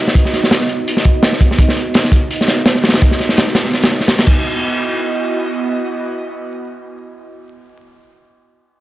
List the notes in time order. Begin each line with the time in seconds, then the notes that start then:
Already playing: B3 D#4 F#4 D#5
0.07 snare
0.15 B3 D#4 F#4 D#5, kick, closed hi-hat
0.25 snare
0.33 snare, closed hi-hat
0.43 B3 D#4 F#4 D#5, snare
0.51 snare, closed hi-hat
0.61 snare
0.69 B3 D#4 F#4 D#5, closed hi-hat
0.88 closed hi-hat
0.97 snare
1.05 kick, closed hi-hat
1.23 snare, closed hi-hat
1.32 snare
1.41 kick, closed hi-hat
1.51 snare
1.58 B3 D#4 F#4 D#5, kick, closed hi-hat
1.68 snare
1.77 closed hi-hat
1.86 B3 D#4 F#4 D#5
1.94 snare, closed hi-hat
2.04 snare
2.12 B3 D#4 F#4 D#5, kick, closed hi-hat
2.31 closed hi-hat
2.41 snare
2.48 snare, closed hi-hat
2.66 snare, closed hi-hat
2.75 snare
2.84 snare, closed hi-hat
2.89 snare, closed hi-hat
2.94 snare, closed hi-hat
3.01 B3 D#4 F#4 D#5, kick, closed hi-hat
3.11 snare
3.20 snare, closed hi-hat
3.29 B3 D#4 F#4 D#5, snare
3.37 snare, closed hi-hat
3.47 snare
3.55 B3 D#4 F#4 D#5, snare, closed hi-hat
3.65 snare
3.73 snare, closed hi-hat
3.83 snare, closed hi-hat
3.91 snare
4.00 snare, closed hi-hat
4.08 snare, closed hi-hat
4.18 B3 D#4 F#4 D#5, snare, closed hi-hat
4.27 B3 E4 F#4 D#5, kick, crash